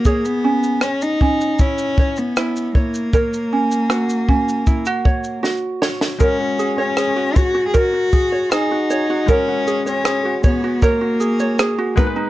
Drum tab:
SH |xx-xxx-xxx-xxx-x|xx-xxx-xxx-x----|x-x-x-x-x-x-x-x-|x-xxx-x-x-xxx-x-|
SD |----r-------r---|----r-------o-oo|----r-------r---|----r-------r---|
BD |o-----o-o-o---o-|o-----o-o-o-----|o-----o-o-o-----|o-----o-o-----o-|